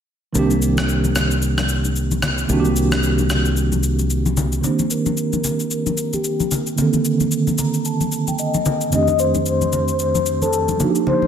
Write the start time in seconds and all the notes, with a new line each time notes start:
0.33 C2 D#3 A#3 C4, low conga, shaker
0.37 D4 G4
0.51 high conga, shaker
0.62 shaker
0.78 cross-stick, high conga, shaker
0.89 shaker
1.04 high conga, shaker
1.16 cross-stick, low conga, shaker
1.31 shaker
1.42 shaker
1.58 cross-stick, high conga, shaker
1.69 shaker
1.85 high conga, shaker
1.96 shaker
2.11 high conga, shaker
2.22 cross-stick, low conga, shaker
2.38 shaker
2.47 C2 D#3 A#3 C4, low conga, shaker
2.52 D4 F#4
2.60 G4
2.65 high conga, shaker
2.76 shaker
2.92 cross-stick, high conga, shaker
3.03 shaker
3.19 high conga, shaker
3.30 cross-stick, low conga, shaker
3.45 shaker
3.57 shaker
3.72 high conga, shaker
3.83 shaker
3.99 high conga, shaker
4.10 shaker
4.26 high conga, shaker
4.37 low conga, shaker
4.52 shaker
4.61 D#3 A#3 C4 C5, low conga, shaker
4.66 D4 G4
4.79 high conga, shaker
4.91 A#4, shaker
5.06 high conga, shaker
5.17 A#4, shaker
5.33 high conga, shaker
5.44 low conga, shaker
5.60 shaker
5.71 A#4, shaker
5.86 high conga, shaker
5.98 shaker
6.13 G4, high conga, shaker
6.24 shaker
6.40 high conga, shaker
6.51 low conga, shaker
6.67 shaker
6.75 D#3 A#3 C4, low conga, shaker
6.80 D3 A4
6.93 high conga, shaker
7.05 shaker
7.20 high conga, shaker
7.32 shaker
7.47 high conga, shaker
7.58 A#5, low conga, shaker
7.74 shaker
7.85 A5, shaker
8.01 high conga, shaker
8.12 shaker
8.28 G5, high conga, shaker
8.39 D#5, shaker
8.54 high conga, shaker
8.66 low conga, shaker
8.81 shaker
8.90 F2 D#3 A3 C4 D#5, low conga, shaker
8.95 D4 G4
9.08 high conga, shaker
9.19 C5, shaker
9.35 high conga, shaker
9.46 C5, shaker
9.62 high conga, shaker
9.73 low conga, shaker
9.88 shaker
9.99 C5, shaker
10.15 high conga, shaker
10.26 shaker
10.42 A4, high conga, shaker
10.53 shaker
10.69 high conga, shaker
10.77 F3 A#3 D4, low conga, shaker
10.82 D#4 F#4
10.90 G4
10.95 shaker
11.07 C5, low conga
11.22 high conga